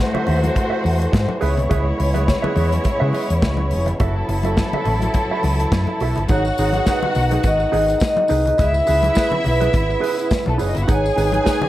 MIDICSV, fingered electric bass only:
0, 0, Header, 1, 3, 480
1, 0, Start_track
1, 0, Tempo, 574163
1, 1428, Time_signature, 4, 2, 24, 8
1, 9771, End_track
2, 0, Start_track
2, 0, Title_t, "Fingered electric bass"
2, 0, Program_c, 0, 33
2, 232, Note_on_c, 0, 39, 75
2, 400, Note_off_c, 0, 39, 0
2, 710, Note_on_c, 0, 40, 79
2, 878, Note_off_c, 0, 40, 0
2, 949, Note_on_c, 0, 44, 96
2, 1043, Note_off_c, 0, 44, 0
2, 1189, Note_on_c, 0, 37, 95
2, 1324, Note_off_c, 0, 37, 0
2, 1324, Note_on_c, 0, 36, 81
2, 1398, Note_off_c, 0, 36, 0
2, 1428, Note_on_c, 0, 37, 90
2, 1597, Note_off_c, 0, 37, 0
2, 1671, Note_on_c, 0, 37, 86
2, 1934, Note_off_c, 0, 37, 0
2, 2144, Note_on_c, 0, 40, 94
2, 2314, Note_off_c, 0, 40, 0
2, 2520, Note_on_c, 0, 49, 91
2, 2595, Note_off_c, 0, 49, 0
2, 2762, Note_on_c, 0, 40, 80
2, 2836, Note_off_c, 0, 40, 0
2, 2862, Note_on_c, 0, 37, 91
2, 3102, Note_on_c, 0, 29, 80
2, 3115, Note_off_c, 0, 37, 0
2, 3273, Note_off_c, 0, 29, 0
2, 3345, Note_on_c, 0, 30, 100
2, 3515, Note_off_c, 0, 30, 0
2, 3582, Note_on_c, 0, 30, 89
2, 3848, Note_off_c, 0, 30, 0
2, 4066, Note_on_c, 0, 33, 90
2, 4235, Note_off_c, 0, 33, 0
2, 4546, Note_on_c, 0, 37, 87
2, 4716, Note_off_c, 0, 37, 0
2, 4783, Note_on_c, 0, 42, 97
2, 4879, Note_off_c, 0, 42, 0
2, 5023, Note_on_c, 0, 35, 65
2, 5119, Note_off_c, 0, 35, 0
2, 5163, Note_on_c, 0, 31, 76
2, 5237, Note_off_c, 0, 31, 0
2, 5263, Note_on_c, 0, 32, 99
2, 5433, Note_off_c, 0, 32, 0
2, 5506, Note_on_c, 0, 32, 91
2, 5676, Note_off_c, 0, 32, 0
2, 5987, Note_on_c, 0, 35, 77
2, 6156, Note_off_c, 0, 35, 0
2, 6220, Note_on_c, 0, 32, 106
2, 6391, Note_off_c, 0, 32, 0
2, 6464, Note_on_c, 0, 32, 99
2, 6634, Note_off_c, 0, 32, 0
2, 6945, Note_on_c, 0, 36, 84
2, 7115, Note_off_c, 0, 36, 0
2, 7184, Note_on_c, 0, 37, 108
2, 7354, Note_off_c, 0, 37, 0
2, 7430, Note_on_c, 0, 37, 94
2, 7598, Note_off_c, 0, 37, 0
2, 7912, Note_on_c, 0, 35, 88
2, 8079, Note_off_c, 0, 35, 0
2, 8141, Note_on_c, 0, 32, 92
2, 8312, Note_off_c, 0, 32, 0
2, 8757, Note_on_c, 0, 35, 98
2, 8833, Note_off_c, 0, 35, 0
2, 8868, Note_on_c, 0, 30, 75
2, 8962, Note_off_c, 0, 30, 0
2, 9005, Note_on_c, 0, 31, 82
2, 9078, Note_off_c, 0, 31, 0
2, 9102, Note_on_c, 0, 32, 102
2, 9273, Note_off_c, 0, 32, 0
2, 9342, Note_on_c, 0, 32, 97
2, 9513, Note_off_c, 0, 32, 0
2, 9771, End_track
3, 0, Start_track
3, 0, Title_t, "Muted fingered electric bass strokes"
3, 2384, Note_on_c, 9, 29, 46
3, 2467, Note_off_c, 9, 29, 0
3, 9771, End_track
0, 0, End_of_file